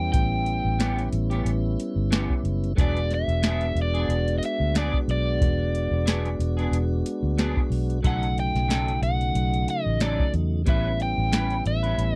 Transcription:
Already playing: E2 G3 B3 C#4 E4 G5
0.12 A1 G5, kick, closed hi-hat
0.46 closed hi-hat
0.65 A1
0.79 E3 B3 C#4 G4, snare, closed hi-hat
0.99 closed hi-hat
1.13 A1, closed hi-hat
1.30 B3 C#4 G4, closed hi-hat
1.45 A1, closed hi-hat
1.80 closed hi-hat
1.96 G1
2.11 E3 B3 C#4 G4, snare, closed hi-hat
2.30 kick
2.43 F#1, closed hi-hat
2.64 closed hi-hat
2.75 E1 F#3 G#3 B3 D4 G#4, kick, closed hi-hat
2.79 F#4 D5
2.97 closed hi-hat
3.11 E5, snare, closed hi-hat
3.28 E1, closed hi-hat
3.42 F#3 B3 D4 G#4, snare, closed hi-hat
3.61 closed hi-hat
3.75 E1, closed hi-hat
3.82 D5
3.94 B3 D4 G#4, closed hi-hat
4.09 E1, closed hi-hat
4.28 closed hi-hat
4.38 D#5
4.43 E5, closed hi-hat
4.60 D2
4.74 F#3 B3 D4 G#4 D5, snare, closed hi-hat
4.93 kick
5.08 B1 D5, closed hi-hat
5.41 E1, kick, closed hi-hat
5.75 closed hi-hat
5.91 E1
6.06 F#3 B3 D4 G#4, snare, closed hi-hat
6.25 closed hi-hat
6.39 E1, closed hi-hat
6.57 B3 D4 G#4, closed hi-hat
6.71 E1, closed hi-hat
7.06 closed hi-hat
7.23 D2
7.38 F#3 B3 D4 G#4, snare, closed hi-hat
7.57 kick
7.70 B1, open hi-hat
7.90 closed hi-hat
8.01 B1 C#3 F#3 A3 C#4 D#4, kick, closed hi-hat
8.05 A4 F#5
8.23 closed hi-hat
8.38 G5, closed hi-hat
8.55 B1, snare, closed hi-hat
8.68 F#3 C#4 D#4 A4, snare, closed hi-hat
8.88 closed hi-hat
9.02 B1 F#5, closed hi-hat
9.21 closed hi-hat
9.35 B1, closed hi-hat
9.54 closed hi-hat
9.68 D#5, closed hi-hat
9.86 A1
10.00 F#3 C#4 D#4 A4 D5, snare, closed hi-hat
10.19 kick
10.34 E2, closed hi-hat
10.64 A1 G3 B3 C#4 E4 B4, kick, closed hi-hat
10.69 E5
11.00 G5, closed hi-hat
11.18 A1
11.32 G3 C#4 E4 B4, snare, closed hi-hat
11.50 closed hi-hat
11.66 A1 E5, closed hi-hat
11.83 C#4 E4 B4, closed hi-hat
11.98 A1, closed hi-hat

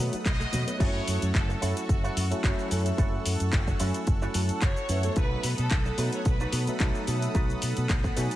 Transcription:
Already playing: F#3 A3 F#5 B5 D#6
0.00 A3 B3 D#4 B4
0.13 F#3, muted fingered electric bass stroke, closed hi-hat, cabasa, shaker
0.25 B1 F#3 D#5, kick, clap, closed hi-hat, cabasa, shaker
0.40 A3, high bongo, cabasa, shaker
0.52 B2 D#3 F#3 A3 B3 D#4 C#5, open hi-hat, high conga, low conga, cabasa, shaker
0.67 B3, closed hi-hat, cabasa, shaker
0.79 F#1 F#3 A3 C#4 E4 F#4 A4 C#5 F#5 C#6 E6, kick, closed hi-hat, crash, shaker
1.08 F#2, open hi-hat, shaker
1.22 F#2, closed hi-hat, shaker
1.35 F#1 A4, muted clean electric guitar stroke, kick, clap, closed hi-hat, shaker
1.49 muted clean electric guitar stroke, shaker
1.61 F#2 F#3 A3 C#4 E4 F#4 A4 C#5, open hi-hat, shaker
1.77 closed hi-hat, shaker
1.89 F#1, kick, closed hi-hat, shaker
2.04 E4 F#4 A4 C#5, shaker
2.17 F#2, open hi-hat, shaker
2.31 F#3 A3 C#4 E4 A4, muted fingered electric bass stroke, closed hi-hat, shaker
2.43 F#1 F#3 A3 C#4 E4 F#4 A4 C#5, kick, clap, closed hi-hat, shaker
2.59 shaker
2.70 F#2 F#3 A3 C#4 E4 A4, open hi-hat, shaker
2.86 closed hi-hat, shaker
2.98 F#1 E4 F#4 A4 C#5, kick, closed hi-hat, shaker
3.26 F#2, open hi-hat, shaker
3.40 F#2, closed hi-hat, shaker
3.53 F#1, muted clean electric guitar stroke, kick, clap, closed hi-hat, shaker
3.67 muted clean electric guitar stroke, kick, shaker
3.80 F#2 F#3 A3 C#4 E4 F#4 A4 C#5 G#5, open hi-hat, shaker
3.94 closed hi-hat, shaker
4.07 F#1, kick, closed hi-hat, shaker
4.22 E4 F#4 A4 C#5, shaker
4.34 F#2 F#3 A3 C#4 E4 A4 A5, open hi-hat, shaker
4.49 muted fingered electric bass stroke, closed hi-hat, shaker
4.62 F#1 E4 F#4 A4 C#5 F#5, kick, clap, closed hi-hat, shaker
4.77 shaker
4.89 F#2 F#3 A3 C#4 E4 B4 E5, open hi-hat, shaker
5.03 F#3 A3 B3 D#4 A4, closed hi-hat, shaker
5.16 B1 D#4 F#4 A4 B4 B5 D#6, kick, closed hi-hat, shaker
5.43 B2, open hi-hat, shaker
5.58 B2 A4, closed hi-hat, shaker
5.71 B1, muted clean electric guitar stroke, kick, clap, closed hi-hat, shaker
5.86 muted clean electric guitar stroke, shaker
5.97 B2 F#3 A3 B3 D#4 F#4 A4 B4, open hi-hat, shaker
6.13 C#5, closed hi-hat, shaker
6.25 B1 B4, kick, closed hi-hat, shaker
6.40 D#4 F#4 A4 B4, shaker
6.52 B2, open hi-hat, shaker
6.67 F#3 A3 B3 D#4 A4, muted fingered electric bass stroke, closed hi-hat, shaker
6.80 B1 F#3 A3 B3 D#4 F#4 A4 B4, kick, clap, closed hi-hat, shaker
6.95 shaker
7.07 B2 F#3 A3 B3 D#4 A4, open hi-hat, shaker
7.22 closed hi-hat, shaker
7.35 B1 D#4 F#4 A4 B4, kick, closed hi-hat, shaker
7.50 shaker
7.62 B2, open hi-hat, shaker
7.77 B2, closed hi-hat, shaker
7.89 B1, muted clean electric guitar stroke, kick, clap, closed hi-hat, shaker
8.04 muted clean electric guitar stroke, kick, shaker
8.16 B2 F#3 A3 B3 D#4 F#4 A4 B4 G#5, open hi-hat, shaker
8.31 closed hi-hat, shaker

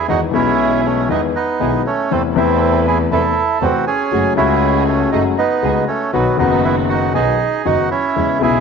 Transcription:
0.08 E2 D#3 E3 G#3 B3 D#4 E4 F#4 G#4
0.31 B1 B2 E3 G#3 B3 C#4 E4 G#4
0.36 E4
0.85 A3 C#4
1.09 E2 D#3 E3 G#3 B3 D#4 E4 G#4
1.35 B3 D#4
1.60 B1 B2 D#3 G#3 B3 D#4 E4 G#4
1.86 A3 C#4
2.11 E2 C3 E3 A3 B3 C4 E4 A4 B4
2.34 E2 C3 E3 A3 C4 E4 A4 B4
2.87 E4 G#4
3.11 E2 C3 E3 A3 B3 C4 E4 A4 B4
3.61 E2 C3 E3 A3 B3 C4 E4 F#4 A4 B4
3.87 C#4 G#4
4.11 F#1 F#2 C#3 F#3 G#3 A3 F#4 G#4
4.36 C#2 C#3 G#3 A3 C#4 E4 F#4 G#4
4.87 A3 C#4
5.12 F#1 F#2 C#3 F#3 G#3 A3 D#4 F#4 G#4
5.38 B3 D#4
5.62 C#2 C#3 G#3 A3 F#4 G#4
5.88 A3 C#4
6.13 B1 B2 D#3 F#3 B3 D#4 F#4
6.37 F#1 F#2 D#3 F#3 B3 D#4 F#4
6.41 F#4
6.64 B3 E4
6.89 D#4 F#4
7.14 B1 B2 D#3 F#3 B3 D#4 F#4 G#4
7.65 F#1 F#2 D#3 F#3 B3 D#4 F#4
7.91 C#4 E4
8.16 E2 C#3 E3 G#3 B3 C#4 E4
8.39 B1 B2 C#3 G#3 B3 C#4 E4 G#4

